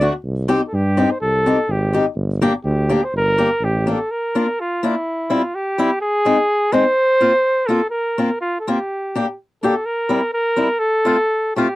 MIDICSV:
0, 0, Header, 1, 4, 480
1, 0, Start_track
1, 0, Key_signature, -2, "minor"
1, 0, Tempo, 480384
1, 256, Time_signature, 2, 2, 24, 8
1, 4097, Key_signature, -2, "major"
1, 11746, End_track
2, 0, Start_track
2, 0, Title_t, "Flugelhorn"
2, 0, Program_c, 0, 56
2, 0, Note_on_c, 0, 74, 91
2, 112, Note_off_c, 0, 74, 0
2, 673, Note_on_c, 0, 69, 55
2, 742, Note_on_c, 0, 67, 98
2, 756, Note_off_c, 0, 69, 0
2, 1107, Note_on_c, 0, 72, 70
2, 1122, Note_off_c, 0, 67, 0
2, 1203, Note_off_c, 0, 72, 0
2, 1209, Note_on_c, 0, 69, 99
2, 1711, Note_on_c, 0, 67, 80
2, 1726, Note_off_c, 0, 69, 0
2, 2063, Note_off_c, 0, 67, 0
2, 2643, Note_on_c, 0, 67, 83
2, 3040, Note_on_c, 0, 72, 75
2, 3055, Note_off_c, 0, 67, 0
2, 3137, Note_off_c, 0, 72, 0
2, 3170, Note_on_c, 0, 70, 110
2, 3640, Note_on_c, 0, 67, 88
2, 3655, Note_off_c, 0, 70, 0
2, 3884, Note_off_c, 0, 67, 0
2, 3902, Note_on_c, 0, 69, 75
2, 4107, Note_on_c, 0, 70, 88
2, 4122, Note_off_c, 0, 69, 0
2, 4599, Note_on_c, 0, 65, 77
2, 4614, Note_off_c, 0, 70, 0
2, 4835, Note_on_c, 0, 64, 78
2, 4850, Note_off_c, 0, 65, 0
2, 5326, Note_on_c, 0, 65, 77
2, 5341, Note_off_c, 0, 64, 0
2, 5544, Note_on_c, 0, 67, 96
2, 5559, Note_off_c, 0, 65, 0
2, 6004, Note_off_c, 0, 67, 0
2, 6010, Note_on_c, 0, 68, 105
2, 6721, Note_on_c, 0, 72, 115
2, 6736, Note_off_c, 0, 68, 0
2, 7660, Note_on_c, 0, 69, 91
2, 7675, Note_off_c, 0, 72, 0
2, 7889, Note_off_c, 0, 69, 0
2, 7895, Note_on_c, 0, 70, 85
2, 8357, Note_off_c, 0, 70, 0
2, 8404, Note_on_c, 0, 65, 84
2, 8574, Note_off_c, 0, 65, 0
2, 8590, Note_on_c, 0, 69, 58
2, 8684, Note_on_c, 0, 67, 73
2, 8699, Note_off_c, 0, 69, 0
2, 9356, Note_off_c, 0, 67, 0
2, 9622, Note_on_c, 0, 69, 79
2, 9848, Note_on_c, 0, 70, 98
2, 9863, Note_off_c, 0, 69, 0
2, 10316, Note_off_c, 0, 70, 0
2, 10322, Note_on_c, 0, 70, 101
2, 10783, Note_on_c, 0, 69, 106
2, 10798, Note_off_c, 0, 70, 0
2, 11535, Note_off_c, 0, 69, 0
2, 11546, Note_on_c, 0, 67, 79
2, 11746, Note_off_c, 0, 67, 0
2, 11746, End_track
3, 0, Start_track
3, 0, Title_t, "Steel-string acoustic guitar"
3, 0, Program_c, 1, 25
3, 9, Note_on_c, 1, 57, 57
3, 15, Note_on_c, 1, 62, 53
3, 19, Note_on_c, 1, 66, 67
3, 122, Note_off_c, 1, 57, 0
3, 122, Note_off_c, 1, 62, 0
3, 126, Note_off_c, 1, 66, 0
3, 481, Note_on_c, 1, 63, 53
3, 482, Note_on_c, 1, 60, 69
3, 486, Note_on_c, 1, 67, 79
3, 598, Note_off_c, 1, 63, 0
3, 600, Note_off_c, 1, 60, 0
3, 601, Note_off_c, 1, 67, 0
3, 971, Note_on_c, 1, 60, 57
3, 977, Note_on_c, 1, 63, 52
3, 977, Note_on_c, 1, 67, 60
3, 1082, Note_off_c, 1, 60, 0
3, 1084, Note_off_c, 1, 67, 0
3, 1086, Note_off_c, 1, 63, 0
3, 1460, Note_on_c, 1, 60, 54
3, 1465, Note_on_c, 1, 63, 51
3, 1470, Note_on_c, 1, 67, 69
3, 1565, Note_off_c, 1, 60, 0
3, 1566, Note_off_c, 1, 63, 0
3, 1570, Note_off_c, 1, 67, 0
3, 1932, Note_on_c, 1, 60, 53
3, 1942, Note_on_c, 1, 67, 64
3, 1943, Note_on_c, 1, 63, 60
3, 2037, Note_off_c, 1, 60, 0
3, 2042, Note_off_c, 1, 67, 0
3, 2043, Note_off_c, 1, 63, 0
3, 2414, Note_on_c, 1, 58, 75
3, 2420, Note_on_c, 1, 62, 63
3, 2421, Note_on_c, 1, 67, 90
3, 2517, Note_off_c, 1, 58, 0
3, 2520, Note_off_c, 1, 67, 0
3, 2521, Note_off_c, 1, 62, 0
3, 2891, Note_on_c, 1, 58, 63
3, 2899, Note_on_c, 1, 62, 59
3, 2901, Note_on_c, 1, 67, 68
3, 2996, Note_off_c, 1, 58, 0
3, 2999, Note_off_c, 1, 67, 0
3, 3000, Note_off_c, 1, 62, 0
3, 3376, Note_on_c, 1, 62, 49
3, 3379, Note_on_c, 1, 58, 57
3, 3383, Note_on_c, 1, 67, 65
3, 3479, Note_off_c, 1, 62, 0
3, 3481, Note_off_c, 1, 58, 0
3, 3482, Note_off_c, 1, 67, 0
3, 3864, Note_on_c, 1, 58, 59
3, 3873, Note_on_c, 1, 62, 50
3, 3878, Note_on_c, 1, 67, 56
3, 3969, Note_off_c, 1, 58, 0
3, 3974, Note_off_c, 1, 62, 0
3, 3976, Note_off_c, 1, 67, 0
3, 4348, Note_on_c, 1, 58, 52
3, 4350, Note_on_c, 1, 62, 49
3, 4354, Note_on_c, 1, 65, 64
3, 4454, Note_off_c, 1, 62, 0
3, 4455, Note_off_c, 1, 58, 0
3, 4455, Note_off_c, 1, 65, 0
3, 4825, Note_on_c, 1, 58, 60
3, 4831, Note_on_c, 1, 65, 71
3, 4837, Note_on_c, 1, 62, 57
3, 4934, Note_off_c, 1, 58, 0
3, 4934, Note_off_c, 1, 65, 0
3, 4938, Note_off_c, 1, 62, 0
3, 5293, Note_on_c, 1, 60, 49
3, 5299, Note_on_c, 1, 55, 58
3, 5299, Note_on_c, 1, 64, 66
3, 5406, Note_off_c, 1, 60, 0
3, 5407, Note_off_c, 1, 64, 0
3, 5409, Note_off_c, 1, 55, 0
3, 5778, Note_on_c, 1, 55, 59
3, 5784, Note_on_c, 1, 60, 61
3, 5789, Note_on_c, 1, 64, 80
3, 5886, Note_off_c, 1, 55, 0
3, 5888, Note_off_c, 1, 60, 0
3, 5891, Note_off_c, 1, 64, 0
3, 6247, Note_on_c, 1, 56, 57
3, 6254, Note_on_c, 1, 60, 54
3, 6256, Note_on_c, 1, 63, 67
3, 6358, Note_off_c, 1, 56, 0
3, 6358, Note_off_c, 1, 63, 0
3, 6359, Note_off_c, 1, 60, 0
3, 6718, Note_on_c, 1, 56, 68
3, 6726, Note_on_c, 1, 60, 55
3, 6731, Note_on_c, 1, 63, 67
3, 6828, Note_off_c, 1, 56, 0
3, 6833, Note_off_c, 1, 60, 0
3, 6833, Note_off_c, 1, 63, 0
3, 7199, Note_on_c, 1, 58, 58
3, 7202, Note_on_c, 1, 60, 48
3, 7211, Note_on_c, 1, 65, 57
3, 7306, Note_off_c, 1, 58, 0
3, 7309, Note_off_c, 1, 60, 0
3, 7310, Note_off_c, 1, 65, 0
3, 7678, Note_on_c, 1, 58, 57
3, 7683, Note_on_c, 1, 60, 47
3, 7693, Note_on_c, 1, 65, 55
3, 7788, Note_off_c, 1, 58, 0
3, 7790, Note_off_c, 1, 60, 0
3, 7796, Note_off_c, 1, 65, 0
3, 8173, Note_on_c, 1, 58, 55
3, 8174, Note_on_c, 1, 60, 51
3, 8180, Note_on_c, 1, 65, 56
3, 8277, Note_off_c, 1, 60, 0
3, 8278, Note_off_c, 1, 58, 0
3, 8281, Note_off_c, 1, 65, 0
3, 8666, Note_on_c, 1, 60, 50
3, 8671, Note_on_c, 1, 58, 66
3, 8673, Note_on_c, 1, 65, 74
3, 8765, Note_off_c, 1, 60, 0
3, 8767, Note_off_c, 1, 58, 0
3, 8768, Note_off_c, 1, 65, 0
3, 9147, Note_on_c, 1, 58, 59
3, 9147, Note_on_c, 1, 62, 48
3, 9155, Note_on_c, 1, 67, 73
3, 9244, Note_off_c, 1, 62, 0
3, 9246, Note_off_c, 1, 58, 0
3, 9246, Note_off_c, 1, 67, 0
3, 9621, Note_on_c, 1, 62, 51
3, 9625, Note_on_c, 1, 58, 64
3, 9634, Note_on_c, 1, 67, 76
3, 9719, Note_off_c, 1, 62, 0
3, 9721, Note_off_c, 1, 58, 0
3, 9726, Note_off_c, 1, 67, 0
3, 10083, Note_on_c, 1, 55, 61
3, 10091, Note_on_c, 1, 60, 55
3, 10095, Note_on_c, 1, 64, 55
3, 10187, Note_off_c, 1, 55, 0
3, 10191, Note_off_c, 1, 60, 0
3, 10193, Note_off_c, 1, 64, 0
3, 10555, Note_on_c, 1, 60, 54
3, 10560, Note_on_c, 1, 55, 62
3, 10567, Note_on_c, 1, 64, 59
3, 10660, Note_off_c, 1, 60, 0
3, 10662, Note_off_c, 1, 55, 0
3, 10666, Note_off_c, 1, 64, 0
3, 11040, Note_on_c, 1, 57, 59
3, 11043, Note_on_c, 1, 60, 52
3, 11054, Note_on_c, 1, 65, 69
3, 11146, Note_off_c, 1, 57, 0
3, 11146, Note_off_c, 1, 60, 0
3, 11152, Note_off_c, 1, 65, 0
3, 11555, Note_on_c, 1, 57, 57
3, 11564, Note_on_c, 1, 60, 56
3, 11571, Note_on_c, 1, 65, 70
3, 11651, Note_off_c, 1, 57, 0
3, 11656, Note_off_c, 1, 60, 0
3, 11657, Note_off_c, 1, 65, 0
3, 11746, End_track
4, 0, Start_track
4, 0, Title_t, "Tuba"
4, 0, Program_c, 2, 58
4, 240, Note_on_c, 2, 36, 68
4, 558, Note_off_c, 2, 36, 0
4, 729, Note_on_c, 2, 43, 90
4, 1043, Note_off_c, 2, 43, 0
4, 1218, Note_on_c, 2, 36, 64
4, 1527, Note_off_c, 2, 36, 0
4, 1681, Note_on_c, 2, 32, 83
4, 1993, Note_off_c, 2, 32, 0
4, 2150, Note_on_c, 2, 31, 71
4, 2466, Note_off_c, 2, 31, 0
4, 2642, Note_on_c, 2, 38, 87
4, 2954, Note_off_c, 2, 38, 0
4, 3132, Note_on_c, 2, 31, 71
4, 3443, Note_off_c, 2, 31, 0
4, 3604, Note_on_c, 2, 33, 74
4, 3924, Note_off_c, 2, 33, 0
4, 11746, End_track
0, 0, End_of_file